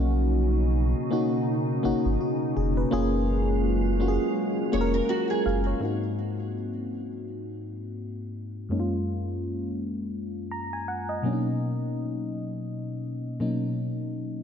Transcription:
Already playing: sub bass B1, ambient pad B2 C#3 C#4 D#4, fm electric piano A#3 C#4 D#4 F#4
1.11 fm electric piano A#3 C#4 D#4 F#4
1.83 sub bass G#1, fm electric piano A#3 C#4 D#4 F#4
2.05 sub bass G#1
2.21 fm electric piano F#4
2.56 sub bass F1, fm electric piano G#4
2.77 fm electric piano B4
2.91 sub bass F#1, ambient pad F#3 G#3 F4, fm electric piano A#3 C#4 F4 G#4
4.00 fm electric piano A#3 C#4 F4 F#4
4.08 fm electric piano G#4
4.72 sub bass F1, fm electric piano A#3 C#4 F4 G#4, nylon-string guitar C#5
4.81 fm electric piano A#4
4.94 nylon-string guitar A#4
5.09 nylon-string guitar F#4
5.30 nylon-string guitar G#4, fm electric piano G#5
5.46 sub bass F#1, fm electric piano F5
5.67 fm electric piano C#5
5.80 fm electric piano G#2 A#3 C4 D#4
5.84 fm electric piano F#4
8.69 fm electric piano F#2 G#3 A#3 C#4
8.73 fm electric piano D#4
8.80 fm electric piano F4
10.51 fm electric piano A#5
10.73 fm electric piano G#5
10.88 fm electric piano F#5
11.09 fm electric piano D#5
11.22 fm electric piano B2 F#3 A#3 C#4
11.27 fm electric piano D4
11.33 fm electric piano D#4
13.40 fm electric piano B2 F#3 A#3 C#4 D#4

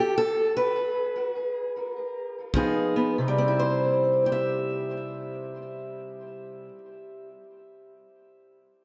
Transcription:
0.00 steel-string acoustic guitar G4
0.18 steel-string acoustic guitar A4
0.57 steel-string acoustic guitar B4
2.54 steel-string acoustic guitar C#3 F3 B3 D#4 G#4, kick
2.96 steel-string acoustic guitar B3
3.18 steel-string acoustic guitar C3
3.28 steel-string acoustic guitar G3
3.38 steel-string acoustic guitar C4
3.48 steel-string acoustic guitar E4
3.60 steel-string acoustic guitar C5
4.26 steel-string acoustic guitar G4
4.32 steel-string acoustic guitar E5

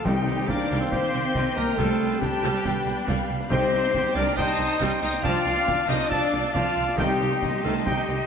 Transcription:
0.05 double bass section C2, timpani C3, viola section D#3 G3, trombone section D#3 C4, cello section G3, oboe D#4, french horn section G4, clarinet G4, flute G5, violin section G5 C6, trumpet G5, concert bass drum, snare
0.27 double bass section C2, viola section G3, snare
0.38 snare
0.48 double bass section C2, viola section G3, cello section D4, oboe A#4, french horn section D5, clarinet D5, flute F5, violin section D6, concert bass drum, snare
0.71 double bass section C2, viola section G3
0.80 cello section C4, oboe A4, french horn section C5, clarinet C5, violin section C6
0.91 double bass section C2, viola section G3, cello section C4, oboe G4, french horn section C5, clarinet C5, violin section C6, concert bass drum, snare
1.03 snare
1.13 double bass section C2, viola section G3, snare
1.35 double bass section C2, viola section G3, flute D#5, concert bass drum, snare
1.56 double bass section C2, viola section G3, cello section A#3, oboe G4, french horn section A#4, clarinet A#4, violin section A#5, snare
1.68 snare
1.76 double bass section C2, viola section G3 D4, trombone section G3, cello section A3, oboe F4, french horn section A4, clarinet A4, flute G5, violin section A5 B5, concert bass drum, snare
2.00 double bass section C2, viola section G3, snare
2.11 snare
2.19 double bass section C2, viola section G3, cello section G3, oboe D4, french horn section G4, clarinet G4, violin section G5, flute A5, concert bass drum, snare
2.42 double bass section C2, viola section G3, snare
2.55 snare
2.64 double bass section C2, viola section G3, trombone section B3, flute G5, concert bass drum, snare
2.86 double bass section C2, viola section G3, snare
2.98 snare
3.08 double bass section C2, viola section G3, flute F5, concert bass drum, snare
3.29 double bass section C2, viola section G3
3.41 snare
3.49 double bass section C2, timpani C3, viola section G3 D#4, trombone section G3 D#4, cello section C4, oboe G4, french horn section C5, clarinet C5, flute D#5, trumpet G5, violin section G5 C6, concert bass drum, snare, crash
3.73 double bass section C2, viola section G3, snare
3.84 snare
3.93 double bass section C2, viola section G3, flute G5, concert bass drum, snare
4.14 double bass section C2, viola section G3, cello section D4, oboe A#4, french horn section D5, clarinet D5, violin section D6
4.36 double bass section C2, trombone section G3 D#4, viola section G3, cello section D#4, oboe C5, french horn section D#5, clarinet D#5, trumpet G5, flute A5, violin section D#6, concert bass drum, snare
4.50 snare
4.58 double bass section C2, viola section G3, snare
4.80 double bass section C2, viola section G3, flute G5, concert bass drum, snare
5.01 double bass section C2, viola section G3, cello section D#4, oboe C5, french horn section D#5, clarinet D#5, violin section D#6, snare
5.14 snare
5.23 double bass section C2, viola section F3 D4, trombone section F3 D4, cello section F4, oboe D5, french horn section F5, clarinet F5, violin section A5 D6 F6, trumpet A5, concert bass drum, snare
5.45 double bass section C2, viola section F3, snare
5.57 snare
5.67 double bass section C2, viola section F3, concert bass drum, snare
5.87 double bass section C2, viola section F3, cello section D#4, oboe C5, french horn section D#5, clarinet D#5, violin section D#6, snare
6.00 snare
6.08 double bass section C2, trombone section F3 D4, viola section F3, cello section D4, oboe A4, french horn section D5, clarinet D5, flute F5, trumpet A5, violin section D6, concert bass drum, snare
6.33 double bass section C2, viola section F3, snare
6.44 snare
6.53 double bass section C2, viola section F3, cello section F4, oboe D5, french horn section F5, clarinet F5, flute A5, violin section F6, concert bass drum, snare
6.76 double bass section C2, viola section F3
6.89 snare
6.97 double bass section C2, trombone section C3 D#4, timpani C3, viola section D#3 D#4, cello section G3, oboe D#4, clarinet G4, french horn section G4, violin section G5 C6, flute G5, trumpet G5, concert bass drum, snare
7.20 double bass section C2, viola section D#3, snare
7.32 snare
7.42 double bass section C2, viola section D#3, flute D#5, concert bass drum, snare
7.63 double bass section C2, viola section D#3, cello section A3, oboe F4, french horn section A4, clarinet A4, violin section A5
7.85 double bass section C2, trombone section C3 D#4, viola section D#3, cello section G3, oboe D#4, french horn section G4, clarinet G4, trumpet G5, violin section G5, concert bass drum, snare
7.98 snare
8.08 double bass section C2, viola section D#3, snare

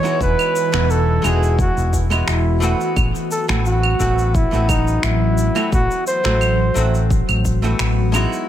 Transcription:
Already playing: ambient pad E3 F#4 B4 D#5 G#5, flugelhorn C#5
0.03 hollow-body jazz guitar G#3 B3 D#4 E4 F#4, shaker
0.21 fretless electric bass E1, flugelhorn B4, kick, shaker
0.39 claves, shaker
0.56 shaker
0.72 fretless electric bass E1, hollow-body jazz guitar E3 B3 D#4 E4 F#4, finger snap, shaker
0.90 flugelhorn A4, shaker
1.22 fretless electric bass E1, hollow-body jazz guitar G#3 B3 D#4 E4 F#4, flugelhorn G#4, claves, shaker
1.43 shaker
1.59 flugelhorn F#4, kick, shaker
1.77 fretless electric bass E1, shaker
1.93 kick, shaker
2.10 hollow-body jazz guitar G#3 B3 E4 F#4 D#5, claves, shaker
2.28 fretless electric bass E1, flugelhorn E4, finger snap, shaker
2.60 hollow-body jazz guitar E3 A3 B3 C4 F#4, shaker
2.81 shaker
2.96 fretless electric bass A1, ambient pad F#3, kick, claves, shaker
3.15 shaker
3.31 flugelhorn A4, shaker
3.48 fretless electric bass A1, hollow-body jazz guitar E3 A3 B3 C4 F#4, finger snap, shaker
3.66 flugelhorn F#4, shaker
3.83 claves
3.99 fretless electric bass A1, hollow-body jazz guitar E3 A3 B3 C4 F#4, kick, shaker
4.18 shaker
4.35 flugelhorn E4, kick, shaker
4.51 fretless electric bass A1, hollow-body jazz guitar E3 A3 B3 C4 F#4, shaker
4.69 flugelhorn D#4, kick, claves, shaker
4.87 shaker
5.03 fretless electric bass A1, flugelhorn E4, finger snap, shaker
5.38 shaker
5.55 hollow-body jazz guitar E3 A3 B3 C4 F#4, claves, shaker
5.72 fretless electric bass A1, flugelhorn F#4, kick, shaker
5.91 shaker
6.07 flugelhorn C5, shaker
6.24 fretless electric bass A1, hollow-body jazz guitar E3 F#3 A3 C4 F#4, finger snap, shaker
6.41 claves, shaker
6.74 fretless electric bass A1, hollow-body jazz guitar E3 F#3 A3 C4 F#4, shaker
6.95 shaker
7.11 kick, shaker
7.29 fretless electric bass A1, claves, shaker
7.45 kick, shaker
7.62 hollow-body jazz guitar E3 A3 B3 C4 F#4, shaker
7.79 fretless electric bass A1, finger snap, shaker
8.12 hollow-body jazz guitar G#3 B3 D#4 E4 F#4, claves, shaker
8.33 shaker

